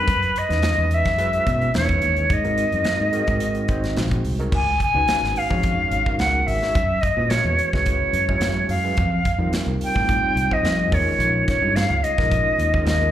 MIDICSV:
0, 0, Header, 1, 6, 480
1, 0, Start_track
1, 0, Tempo, 556586
1, 65, Time_signature, 4, 2, 24, 8
1, 11310, End_track
2, 0, Start_track
2, 0, Title_t, "Flute"
2, 0, Program_c, 0, 73
2, 0, Note_on_c, 0, 71, 94
2, 328, Note_on_c, 0, 75, 114
2, 340, Note_off_c, 0, 71, 0
2, 809, Note_on_c, 0, 76, 98
2, 822, Note_off_c, 0, 75, 0
2, 1517, Note_off_c, 0, 76, 0
2, 1522, Note_on_c, 0, 73, 96
2, 2009, Note_on_c, 0, 75, 91
2, 2022, Note_off_c, 0, 73, 0
2, 3436, Note_off_c, 0, 75, 0
2, 3925, Note_on_c, 0, 80, 95
2, 4138, Note_off_c, 0, 80, 0
2, 4161, Note_on_c, 0, 80, 111
2, 4637, Note_on_c, 0, 77, 95
2, 4650, Note_off_c, 0, 80, 0
2, 5333, Note_off_c, 0, 77, 0
2, 5338, Note_on_c, 0, 78, 86
2, 5575, Note_on_c, 0, 76, 88
2, 5588, Note_off_c, 0, 78, 0
2, 6047, Note_on_c, 0, 75, 92
2, 6059, Note_off_c, 0, 76, 0
2, 6292, Note_on_c, 0, 73, 87
2, 6305, Note_off_c, 0, 75, 0
2, 6664, Note_off_c, 0, 73, 0
2, 6678, Note_on_c, 0, 73, 82
2, 7472, Note_off_c, 0, 73, 0
2, 7499, Note_on_c, 0, 77, 83
2, 8193, Note_off_c, 0, 77, 0
2, 8484, Note_on_c, 0, 79, 93
2, 9079, Note_on_c, 0, 75, 93
2, 9092, Note_off_c, 0, 79, 0
2, 9432, Note_on_c, 0, 73, 82
2, 9445, Note_off_c, 0, 75, 0
2, 9895, Note_off_c, 0, 73, 0
2, 9901, Note_on_c, 0, 73, 88
2, 10138, Note_on_c, 0, 77, 103
2, 10151, Note_off_c, 0, 73, 0
2, 10378, Note_on_c, 0, 75, 97
2, 10391, Note_off_c, 0, 77, 0
2, 11099, Note_off_c, 0, 75, 0
2, 11106, Note_on_c, 0, 75, 84
2, 11310, Note_off_c, 0, 75, 0
2, 11310, End_track
3, 0, Start_track
3, 0, Title_t, "Tine electric piano"
3, 0, Program_c, 1, 4
3, 420, Note_on_c, 1, 56, 68
3, 424, Note_on_c, 1, 61, 64
3, 424, Note_on_c, 1, 63, 70
3, 428, Note_on_c, 1, 64, 65
3, 431, Note_on_c, 1, 71, 85
3, 982, Note_off_c, 1, 56, 0
3, 984, Note_off_c, 1, 63, 0
3, 985, Note_off_c, 1, 61, 0
3, 986, Note_off_c, 1, 64, 0
3, 988, Note_off_c, 1, 71, 0
3, 1016, Note_on_c, 1, 56, 81
3, 1016, Note_on_c, 1, 66, 67
3, 1017, Note_on_c, 1, 61, 73
3, 1019, Note_on_c, 1, 64, 79
3, 1022, Note_on_c, 1, 71, 97
3, 1471, Note_off_c, 1, 56, 0
3, 1471, Note_off_c, 1, 61, 0
3, 1471, Note_off_c, 1, 66, 0
3, 1472, Note_off_c, 1, 64, 0
3, 1474, Note_off_c, 1, 71, 0
3, 1498, Note_on_c, 1, 61, 60
3, 1499, Note_on_c, 1, 56, 65
3, 1502, Note_on_c, 1, 63, 66
3, 1502, Note_on_c, 1, 64, 57
3, 1506, Note_on_c, 1, 71, 66
3, 1981, Note_off_c, 1, 61, 0
3, 1982, Note_off_c, 1, 56, 0
3, 1983, Note_off_c, 1, 63, 0
3, 1983, Note_off_c, 1, 64, 0
3, 1985, Note_off_c, 1, 71, 0
3, 2103, Note_on_c, 1, 60, 65
3, 2103, Note_on_c, 1, 63, 64
3, 2104, Note_on_c, 1, 56, 66
3, 2106, Note_on_c, 1, 66, 60
3, 2109, Note_on_c, 1, 70, 74
3, 2664, Note_off_c, 1, 56, 0
3, 2664, Note_off_c, 1, 60, 0
3, 2664, Note_off_c, 1, 63, 0
3, 2665, Note_off_c, 1, 66, 0
3, 2667, Note_off_c, 1, 70, 0
3, 2694, Note_on_c, 1, 56, 96
3, 2695, Note_on_c, 1, 60, 80
3, 2700, Note_on_c, 1, 63, 71
3, 2701, Note_on_c, 1, 66, 72
3, 2703, Note_on_c, 1, 70, 93
3, 3150, Note_off_c, 1, 56, 0
3, 3150, Note_off_c, 1, 60, 0
3, 3153, Note_off_c, 1, 63, 0
3, 3153, Note_off_c, 1, 66, 0
3, 3154, Note_off_c, 1, 70, 0
3, 3172, Note_on_c, 1, 56, 73
3, 3177, Note_on_c, 1, 60, 69
3, 3182, Note_on_c, 1, 63, 63
3, 3184, Note_on_c, 1, 66, 67
3, 3184, Note_on_c, 1, 72, 85
3, 3744, Note_off_c, 1, 56, 0
3, 3746, Note_off_c, 1, 60, 0
3, 3749, Note_off_c, 1, 63, 0
3, 3750, Note_off_c, 1, 66, 0
3, 3750, Note_off_c, 1, 72, 0
3, 3784, Note_on_c, 1, 56, 75
3, 3789, Note_on_c, 1, 60, 73
3, 3791, Note_on_c, 1, 63, 73
3, 3791, Note_on_c, 1, 66, 77
3, 3796, Note_on_c, 1, 70, 89
3, 3901, Note_off_c, 1, 56, 0
3, 3903, Note_off_c, 1, 60, 0
3, 3905, Note_off_c, 1, 63, 0
3, 3905, Note_off_c, 1, 66, 0
3, 3907, Note_off_c, 1, 70, 0
3, 4261, Note_on_c, 1, 56, 59
3, 4264, Note_on_c, 1, 61, 57
3, 4268, Note_on_c, 1, 63, 63
3, 4269, Note_on_c, 1, 66, 54
3, 4272, Note_on_c, 1, 71, 68
3, 4713, Note_off_c, 1, 56, 0
3, 4714, Note_off_c, 1, 61, 0
3, 4717, Note_off_c, 1, 63, 0
3, 4717, Note_off_c, 1, 66, 0
3, 4719, Note_off_c, 1, 71, 0
3, 4737, Note_on_c, 1, 56, 68
3, 4739, Note_on_c, 1, 61, 67
3, 4741, Note_on_c, 1, 63, 57
3, 4744, Note_on_c, 1, 66, 62
3, 4747, Note_on_c, 1, 73, 80
3, 5191, Note_off_c, 1, 56, 0
3, 5192, Note_off_c, 1, 61, 0
3, 5193, Note_off_c, 1, 63, 0
3, 5195, Note_off_c, 1, 66, 0
3, 5196, Note_off_c, 1, 73, 0
3, 5221, Note_on_c, 1, 56, 70
3, 5226, Note_on_c, 1, 61, 56
3, 5227, Note_on_c, 1, 63, 64
3, 5229, Note_on_c, 1, 66, 63
3, 5231, Note_on_c, 1, 70, 80
3, 5673, Note_off_c, 1, 56, 0
3, 5676, Note_off_c, 1, 61, 0
3, 5676, Note_off_c, 1, 63, 0
3, 5677, Note_off_c, 1, 66, 0
3, 5678, Note_off_c, 1, 70, 0
3, 5702, Note_on_c, 1, 56, 57
3, 5705, Note_on_c, 1, 61, 59
3, 5710, Note_on_c, 1, 63, 64
3, 5711, Note_on_c, 1, 66, 62
3, 5714, Note_on_c, 1, 73, 68
3, 5820, Note_off_c, 1, 56, 0
3, 5821, Note_off_c, 1, 61, 0
3, 5824, Note_off_c, 1, 63, 0
3, 5824, Note_off_c, 1, 66, 0
3, 5826, Note_off_c, 1, 73, 0
3, 6184, Note_on_c, 1, 56, 66
3, 6187, Note_on_c, 1, 61, 61
3, 6192, Note_on_c, 1, 66, 61
3, 6193, Note_on_c, 1, 64, 63
3, 6196, Note_on_c, 1, 71, 72
3, 6634, Note_off_c, 1, 56, 0
3, 6635, Note_off_c, 1, 61, 0
3, 6638, Note_off_c, 1, 64, 0
3, 6638, Note_off_c, 1, 66, 0
3, 6640, Note_off_c, 1, 71, 0
3, 6668, Note_on_c, 1, 56, 74
3, 6669, Note_on_c, 1, 61, 61
3, 6673, Note_on_c, 1, 64, 64
3, 6676, Note_on_c, 1, 66, 62
3, 6678, Note_on_c, 1, 71, 74
3, 7116, Note_off_c, 1, 56, 0
3, 7117, Note_off_c, 1, 61, 0
3, 7119, Note_off_c, 1, 64, 0
3, 7120, Note_off_c, 1, 66, 0
3, 7121, Note_off_c, 1, 71, 0
3, 7145, Note_on_c, 1, 61, 69
3, 7146, Note_on_c, 1, 56, 71
3, 7150, Note_on_c, 1, 66, 61
3, 7151, Note_on_c, 1, 64, 68
3, 7152, Note_on_c, 1, 73, 76
3, 7594, Note_off_c, 1, 61, 0
3, 7595, Note_off_c, 1, 56, 0
3, 7597, Note_off_c, 1, 64, 0
3, 7597, Note_off_c, 1, 66, 0
3, 7598, Note_off_c, 1, 73, 0
3, 7620, Note_on_c, 1, 61, 61
3, 7621, Note_on_c, 1, 56, 67
3, 7627, Note_on_c, 1, 64, 54
3, 7627, Note_on_c, 1, 66, 59
3, 7628, Note_on_c, 1, 71, 74
3, 7738, Note_off_c, 1, 61, 0
3, 7739, Note_off_c, 1, 56, 0
3, 7742, Note_off_c, 1, 64, 0
3, 7742, Note_off_c, 1, 66, 0
3, 7742, Note_off_c, 1, 71, 0
3, 8094, Note_on_c, 1, 55, 79
3, 8096, Note_on_c, 1, 63, 76
3, 8098, Note_on_c, 1, 60, 73
3, 8102, Note_on_c, 1, 65, 73
3, 8103, Note_on_c, 1, 70, 84
3, 8548, Note_off_c, 1, 55, 0
3, 8549, Note_off_c, 1, 63, 0
3, 8551, Note_off_c, 1, 60, 0
3, 8553, Note_off_c, 1, 65, 0
3, 8553, Note_off_c, 1, 70, 0
3, 8576, Note_on_c, 1, 60, 64
3, 8578, Note_on_c, 1, 55, 69
3, 8580, Note_on_c, 1, 63, 63
3, 8582, Note_on_c, 1, 65, 65
3, 8584, Note_on_c, 1, 67, 72
3, 9030, Note_off_c, 1, 55, 0
3, 9030, Note_off_c, 1, 60, 0
3, 9031, Note_off_c, 1, 63, 0
3, 9032, Note_off_c, 1, 65, 0
3, 9034, Note_off_c, 1, 67, 0
3, 9057, Note_on_c, 1, 55, 63
3, 9060, Note_on_c, 1, 60, 64
3, 9062, Note_on_c, 1, 63, 59
3, 9065, Note_on_c, 1, 65, 64
3, 9066, Note_on_c, 1, 72, 80
3, 9403, Note_off_c, 1, 63, 0
3, 9407, Note_off_c, 1, 65, 0
3, 9407, Note_on_c, 1, 56, 78
3, 9410, Note_on_c, 1, 61, 72
3, 9414, Note_on_c, 1, 63, 69
3, 9416, Note_off_c, 1, 55, 0
3, 9418, Note_off_c, 1, 60, 0
3, 9418, Note_on_c, 1, 65, 73
3, 9419, Note_on_c, 1, 70, 85
3, 9421, Note_off_c, 1, 72, 0
3, 9980, Note_off_c, 1, 56, 0
3, 9981, Note_off_c, 1, 61, 0
3, 9983, Note_off_c, 1, 63, 0
3, 9985, Note_off_c, 1, 65, 0
3, 9986, Note_off_c, 1, 70, 0
3, 10015, Note_on_c, 1, 56, 68
3, 10016, Note_on_c, 1, 61, 58
3, 10021, Note_on_c, 1, 63, 57
3, 10023, Note_on_c, 1, 73, 73
3, 10024, Note_on_c, 1, 65, 58
3, 10469, Note_off_c, 1, 56, 0
3, 10469, Note_off_c, 1, 61, 0
3, 10471, Note_off_c, 1, 63, 0
3, 10473, Note_off_c, 1, 65, 0
3, 10473, Note_off_c, 1, 73, 0
3, 10505, Note_on_c, 1, 61, 63
3, 10506, Note_on_c, 1, 56, 66
3, 10508, Note_on_c, 1, 63, 68
3, 10510, Note_on_c, 1, 65, 66
3, 10511, Note_on_c, 1, 70, 83
3, 10954, Note_off_c, 1, 56, 0
3, 10954, Note_off_c, 1, 61, 0
3, 10955, Note_off_c, 1, 63, 0
3, 10956, Note_off_c, 1, 65, 0
3, 10956, Note_off_c, 1, 70, 0
3, 10983, Note_on_c, 1, 61, 63
3, 10984, Note_on_c, 1, 56, 71
3, 10986, Note_on_c, 1, 63, 59
3, 10987, Note_on_c, 1, 65, 61
3, 10990, Note_on_c, 1, 70, 75
3, 11310, Note_off_c, 1, 56, 0
3, 11310, Note_off_c, 1, 61, 0
3, 11310, Note_off_c, 1, 63, 0
3, 11310, Note_off_c, 1, 65, 0
3, 11310, Note_off_c, 1, 70, 0
3, 11310, End_track
4, 0, Start_track
4, 0, Title_t, "Fingered electric bass"
4, 0, Program_c, 2, 33
4, 67, Note_on_c, 2, 42, 78
4, 257, Note_off_c, 2, 42, 0
4, 431, Note_on_c, 2, 40, 84
4, 622, Note_off_c, 2, 40, 0
4, 671, Note_on_c, 2, 40, 91
4, 863, Note_off_c, 2, 40, 0
4, 911, Note_on_c, 2, 42, 77
4, 1193, Note_off_c, 2, 42, 0
4, 1264, Note_on_c, 2, 47, 89
4, 1456, Note_off_c, 2, 47, 0
4, 1516, Note_on_c, 2, 40, 80
4, 1703, Note_off_c, 2, 40, 0
4, 1751, Note_on_c, 2, 39, 73
4, 1940, Note_off_c, 2, 39, 0
4, 1984, Note_on_c, 2, 44, 83
4, 2276, Note_off_c, 2, 44, 0
4, 2356, Note_on_c, 2, 42, 69
4, 2444, Note_off_c, 2, 42, 0
4, 2590, Note_on_c, 2, 44, 72
4, 2782, Note_off_c, 2, 44, 0
4, 2830, Note_on_c, 2, 44, 70
4, 3174, Note_off_c, 2, 44, 0
4, 3179, Note_on_c, 2, 32, 73
4, 3397, Note_off_c, 2, 32, 0
4, 3421, Note_on_c, 2, 34, 73
4, 3638, Note_off_c, 2, 34, 0
4, 3657, Note_on_c, 2, 36, 67
4, 3876, Note_off_c, 2, 36, 0
4, 3898, Note_on_c, 2, 37, 88
4, 4092, Note_off_c, 2, 37, 0
4, 4266, Note_on_c, 2, 37, 78
4, 4358, Note_off_c, 2, 37, 0
4, 4509, Note_on_c, 2, 32, 69
4, 4600, Note_off_c, 2, 32, 0
4, 4743, Note_on_c, 2, 41, 76
4, 4938, Note_off_c, 2, 41, 0
4, 5094, Note_on_c, 2, 32, 86
4, 5199, Note_off_c, 2, 32, 0
4, 5333, Note_on_c, 2, 37, 80
4, 5529, Note_off_c, 2, 37, 0
4, 5574, Note_on_c, 2, 32, 80
4, 5678, Note_off_c, 2, 32, 0
4, 5825, Note_on_c, 2, 42, 90
4, 6016, Note_off_c, 2, 42, 0
4, 6182, Note_on_c, 2, 46, 77
4, 6377, Note_off_c, 2, 46, 0
4, 6420, Note_on_c, 2, 40, 85
4, 6514, Note_off_c, 2, 40, 0
4, 6673, Note_on_c, 2, 37, 85
4, 6863, Note_off_c, 2, 37, 0
4, 7011, Note_on_c, 2, 42, 72
4, 7207, Note_off_c, 2, 42, 0
4, 7246, Note_on_c, 2, 42, 88
4, 7444, Note_off_c, 2, 42, 0
4, 7493, Note_on_c, 2, 42, 92
4, 7688, Note_off_c, 2, 42, 0
4, 7742, Note_on_c, 2, 41, 89
4, 7934, Note_off_c, 2, 41, 0
4, 8093, Note_on_c, 2, 41, 83
4, 8190, Note_off_c, 2, 41, 0
4, 8334, Note_on_c, 2, 36, 84
4, 8431, Note_off_c, 2, 36, 0
4, 8583, Note_on_c, 2, 45, 77
4, 8777, Note_off_c, 2, 45, 0
4, 8931, Note_on_c, 2, 36, 84
4, 9036, Note_off_c, 2, 36, 0
4, 9169, Note_on_c, 2, 41, 82
4, 9365, Note_off_c, 2, 41, 0
4, 9418, Note_on_c, 2, 39, 80
4, 9520, Note_off_c, 2, 39, 0
4, 9647, Note_on_c, 2, 34, 93
4, 9844, Note_off_c, 2, 34, 0
4, 10017, Note_on_c, 2, 43, 76
4, 10212, Note_off_c, 2, 43, 0
4, 10262, Note_on_c, 2, 37, 81
4, 10355, Note_off_c, 2, 37, 0
4, 10506, Note_on_c, 2, 34, 87
4, 10698, Note_off_c, 2, 34, 0
4, 10853, Note_on_c, 2, 39, 87
4, 11048, Note_off_c, 2, 39, 0
4, 11086, Note_on_c, 2, 39, 91
4, 11283, Note_off_c, 2, 39, 0
4, 11310, End_track
5, 0, Start_track
5, 0, Title_t, "Muted fingered electric bass strokes"
5, 4379, Note_on_c, 9, 29, 34
5, 4465, Note_off_c, 9, 29, 0
5, 8210, Note_on_c, 9, 29, 33
5, 8296, Note_off_c, 9, 29, 0
5, 11310, End_track
6, 0, Start_track
6, 0, Title_t, "Drums"
6, 65, Note_on_c, 9, 42, 78
6, 66, Note_on_c, 9, 36, 96
6, 151, Note_off_c, 9, 42, 0
6, 152, Note_off_c, 9, 36, 0
6, 193, Note_on_c, 9, 42, 35
6, 279, Note_off_c, 9, 42, 0
6, 308, Note_on_c, 9, 42, 59
6, 394, Note_off_c, 9, 42, 0
6, 435, Note_on_c, 9, 42, 34
6, 443, Note_on_c, 9, 38, 34
6, 521, Note_off_c, 9, 42, 0
6, 529, Note_off_c, 9, 38, 0
6, 538, Note_on_c, 9, 42, 74
6, 546, Note_on_c, 9, 38, 105
6, 624, Note_off_c, 9, 42, 0
6, 632, Note_off_c, 9, 38, 0
6, 783, Note_on_c, 9, 42, 52
6, 869, Note_off_c, 9, 42, 0
6, 905, Note_on_c, 9, 42, 40
6, 911, Note_on_c, 9, 36, 77
6, 913, Note_on_c, 9, 38, 35
6, 992, Note_off_c, 9, 42, 0
6, 997, Note_off_c, 9, 36, 0
6, 999, Note_off_c, 9, 38, 0
6, 1021, Note_on_c, 9, 42, 76
6, 1107, Note_off_c, 9, 42, 0
6, 1147, Note_on_c, 9, 42, 36
6, 1233, Note_off_c, 9, 42, 0
6, 1265, Note_on_c, 9, 36, 74
6, 1265, Note_on_c, 9, 42, 53
6, 1351, Note_off_c, 9, 36, 0
6, 1351, Note_off_c, 9, 42, 0
6, 1392, Note_on_c, 9, 42, 32
6, 1478, Note_off_c, 9, 42, 0
6, 1502, Note_on_c, 9, 42, 74
6, 1510, Note_on_c, 9, 38, 96
6, 1588, Note_off_c, 9, 42, 0
6, 1596, Note_off_c, 9, 38, 0
6, 1626, Note_on_c, 9, 42, 35
6, 1630, Note_on_c, 9, 36, 77
6, 1713, Note_off_c, 9, 42, 0
6, 1716, Note_off_c, 9, 36, 0
6, 1739, Note_on_c, 9, 42, 52
6, 1825, Note_off_c, 9, 42, 0
6, 1867, Note_on_c, 9, 42, 32
6, 1953, Note_off_c, 9, 42, 0
6, 1981, Note_on_c, 9, 42, 73
6, 1984, Note_on_c, 9, 36, 106
6, 2067, Note_off_c, 9, 42, 0
6, 2070, Note_off_c, 9, 36, 0
6, 2109, Note_on_c, 9, 42, 38
6, 2196, Note_off_c, 9, 42, 0
6, 2221, Note_on_c, 9, 42, 57
6, 2307, Note_off_c, 9, 42, 0
6, 2348, Note_on_c, 9, 42, 35
6, 2435, Note_off_c, 9, 42, 0
6, 2453, Note_on_c, 9, 42, 81
6, 2461, Note_on_c, 9, 38, 102
6, 2539, Note_off_c, 9, 42, 0
6, 2547, Note_off_c, 9, 38, 0
6, 2697, Note_on_c, 9, 42, 59
6, 2784, Note_off_c, 9, 42, 0
6, 2822, Note_on_c, 9, 42, 37
6, 2827, Note_on_c, 9, 36, 80
6, 2908, Note_off_c, 9, 42, 0
6, 2913, Note_off_c, 9, 36, 0
6, 2935, Note_on_c, 9, 42, 80
6, 3021, Note_off_c, 9, 42, 0
6, 3059, Note_on_c, 9, 42, 39
6, 3146, Note_off_c, 9, 42, 0
6, 3176, Note_on_c, 9, 42, 54
6, 3180, Note_on_c, 9, 36, 75
6, 3262, Note_off_c, 9, 42, 0
6, 3267, Note_off_c, 9, 36, 0
6, 3308, Note_on_c, 9, 42, 39
6, 3316, Note_on_c, 9, 38, 35
6, 3394, Note_off_c, 9, 42, 0
6, 3402, Note_off_c, 9, 38, 0
6, 3419, Note_on_c, 9, 42, 72
6, 3427, Note_on_c, 9, 38, 91
6, 3505, Note_off_c, 9, 42, 0
6, 3513, Note_off_c, 9, 38, 0
6, 3545, Note_on_c, 9, 42, 41
6, 3548, Note_on_c, 9, 36, 79
6, 3631, Note_off_c, 9, 42, 0
6, 3634, Note_off_c, 9, 36, 0
6, 3661, Note_on_c, 9, 46, 63
6, 3747, Note_off_c, 9, 46, 0
6, 3790, Note_on_c, 9, 42, 37
6, 3876, Note_off_c, 9, 42, 0
6, 3899, Note_on_c, 9, 49, 96
6, 3901, Note_on_c, 9, 36, 102
6, 3985, Note_off_c, 9, 49, 0
6, 3987, Note_off_c, 9, 36, 0
6, 4141, Note_on_c, 9, 36, 75
6, 4142, Note_on_c, 9, 42, 59
6, 4227, Note_off_c, 9, 36, 0
6, 4228, Note_off_c, 9, 42, 0
6, 4379, Note_on_c, 9, 42, 70
6, 4387, Note_on_c, 9, 38, 103
6, 4465, Note_off_c, 9, 42, 0
6, 4473, Note_off_c, 9, 38, 0
6, 4520, Note_on_c, 9, 38, 32
6, 4607, Note_off_c, 9, 38, 0
6, 4621, Note_on_c, 9, 46, 62
6, 4707, Note_off_c, 9, 46, 0
6, 4748, Note_on_c, 9, 36, 84
6, 4834, Note_off_c, 9, 36, 0
6, 4856, Note_on_c, 9, 42, 73
6, 4861, Note_on_c, 9, 36, 84
6, 4943, Note_off_c, 9, 42, 0
6, 4947, Note_off_c, 9, 36, 0
6, 5100, Note_on_c, 9, 42, 51
6, 5187, Note_off_c, 9, 42, 0
6, 5229, Note_on_c, 9, 36, 71
6, 5315, Note_off_c, 9, 36, 0
6, 5338, Note_on_c, 9, 42, 71
6, 5346, Note_on_c, 9, 38, 83
6, 5424, Note_off_c, 9, 42, 0
6, 5432, Note_off_c, 9, 38, 0
6, 5586, Note_on_c, 9, 46, 63
6, 5672, Note_off_c, 9, 46, 0
6, 5714, Note_on_c, 9, 38, 34
6, 5801, Note_off_c, 9, 38, 0
6, 5823, Note_on_c, 9, 42, 76
6, 5824, Note_on_c, 9, 36, 109
6, 5909, Note_off_c, 9, 42, 0
6, 5910, Note_off_c, 9, 36, 0
6, 6063, Note_on_c, 9, 42, 62
6, 6064, Note_on_c, 9, 36, 78
6, 6149, Note_off_c, 9, 42, 0
6, 6150, Note_off_c, 9, 36, 0
6, 6297, Note_on_c, 9, 42, 82
6, 6304, Note_on_c, 9, 38, 102
6, 6383, Note_off_c, 9, 42, 0
6, 6391, Note_off_c, 9, 38, 0
6, 6542, Note_on_c, 9, 42, 61
6, 6628, Note_off_c, 9, 42, 0
6, 6669, Note_on_c, 9, 36, 76
6, 6674, Note_on_c, 9, 38, 32
6, 6756, Note_off_c, 9, 36, 0
6, 6760, Note_off_c, 9, 38, 0
6, 6775, Note_on_c, 9, 42, 80
6, 6781, Note_on_c, 9, 36, 85
6, 6861, Note_off_c, 9, 42, 0
6, 6868, Note_off_c, 9, 36, 0
6, 7015, Note_on_c, 9, 42, 55
6, 7101, Note_off_c, 9, 42, 0
6, 7147, Note_on_c, 9, 36, 68
6, 7234, Note_off_c, 9, 36, 0
6, 7251, Note_on_c, 9, 42, 78
6, 7259, Note_on_c, 9, 38, 95
6, 7338, Note_off_c, 9, 42, 0
6, 7345, Note_off_c, 9, 38, 0
6, 7494, Note_on_c, 9, 46, 68
6, 7580, Note_off_c, 9, 46, 0
6, 7734, Note_on_c, 9, 42, 77
6, 7741, Note_on_c, 9, 36, 99
6, 7820, Note_off_c, 9, 42, 0
6, 7827, Note_off_c, 9, 36, 0
6, 7978, Note_on_c, 9, 42, 60
6, 7980, Note_on_c, 9, 36, 80
6, 8064, Note_off_c, 9, 42, 0
6, 8067, Note_off_c, 9, 36, 0
6, 8217, Note_on_c, 9, 42, 81
6, 8224, Note_on_c, 9, 38, 92
6, 8303, Note_off_c, 9, 42, 0
6, 8311, Note_off_c, 9, 38, 0
6, 8459, Note_on_c, 9, 46, 68
6, 8546, Note_off_c, 9, 46, 0
6, 8587, Note_on_c, 9, 36, 79
6, 8673, Note_off_c, 9, 36, 0
6, 8699, Note_on_c, 9, 42, 77
6, 8700, Note_on_c, 9, 36, 84
6, 8785, Note_off_c, 9, 42, 0
6, 8787, Note_off_c, 9, 36, 0
6, 8943, Note_on_c, 9, 42, 58
6, 9029, Note_off_c, 9, 42, 0
6, 9067, Note_on_c, 9, 36, 67
6, 9153, Note_off_c, 9, 36, 0
6, 9181, Note_on_c, 9, 42, 67
6, 9189, Note_on_c, 9, 38, 87
6, 9267, Note_off_c, 9, 42, 0
6, 9275, Note_off_c, 9, 38, 0
6, 9419, Note_on_c, 9, 46, 67
6, 9420, Note_on_c, 9, 36, 92
6, 9505, Note_off_c, 9, 46, 0
6, 9506, Note_off_c, 9, 36, 0
6, 9659, Note_on_c, 9, 42, 67
6, 9745, Note_off_c, 9, 42, 0
6, 9900, Note_on_c, 9, 36, 84
6, 9901, Note_on_c, 9, 42, 59
6, 9909, Note_on_c, 9, 38, 36
6, 9986, Note_off_c, 9, 36, 0
6, 9988, Note_off_c, 9, 42, 0
6, 9995, Note_off_c, 9, 38, 0
6, 10144, Note_on_c, 9, 42, 81
6, 10151, Note_on_c, 9, 38, 102
6, 10230, Note_off_c, 9, 42, 0
6, 10238, Note_off_c, 9, 38, 0
6, 10382, Note_on_c, 9, 42, 66
6, 10468, Note_off_c, 9, 42, 0
6, 10506, Note_on_c, 9, 36, 84
6, 10515, Note_on_c, 9, 38, 35
6, 10592, Note_off_c, 9, 36, 0
6, 10601, Note_off_c, 9, 38, 0
6, 10620, Note_on_c, 9, 42, 78
6, 10621, Note_on_c, 9, 36, 92
6, 10707, Note_off_c, 9, 36, 0
6, 10707, Note_off_c, 9, 42, 0
6, 10860, Note_on_c, 9, 42, 55
6, 10946, Note_off_c, 9, 42, 0
6, 10986, Note_on_c, 9, 36, 78
6, 11072, Note_off_c, 9, 36, 0
6, 11095, Note_on_c, 9, 42, 80
6, 11102, Note_on_c, 9, 38, 93
6, 11181, Note_off_c, 9, 42, 0
6, 11189, Note_off_c, 9, 38, 0
6, 11310, End_track
0, 0, End_of_file